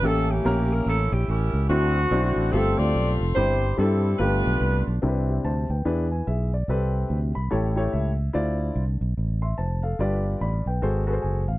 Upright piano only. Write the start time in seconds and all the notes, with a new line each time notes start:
0.03 A2 A#3 C#4 G4 A4
0.45 A#3 C#4 G4 A#4
1.69 D3 C4 D4 E4 F#4
2.11 C4 D4 E4 F#4
2.53 G2 A3 C4 F4 G4
3.36 G2 G3 C4 E4 G4
3.77 G3 C4 D4 A4
3.83 E4
4.19 G2 A3 A#3 F4 G4
4.24 B3
5.02 C3 C4 D4 E4 A#4
5.08 B4
5.29 G4 E5
5.45 C5 A5
5.70 B4 G5
5.85 E3 D4 E4 G#4 B4
6.11 B4 G#5
6.27 G#4 E5
6.54 D5
6.69 C3 C4 G4 A4 B4
7.35 B5
7.51 A2 E4 G4 A4 C#5 A5
7.76 E4 G4 A4 C#5 G5
7.92 E5
8.33 D3 E4 F4 C5 D5
9.42 E5 C6
9.58 C5 A5
9.83 A4 F5
9.99 G2 F4 G4 B4 D5
10.41 D5 B5
10.67 B4 G5
10.82 G#2 F#4 G#4 A4 C5
11.07 F#4 G#4 A4 B4
11.13 C5
11.22 G#5
11.48 F5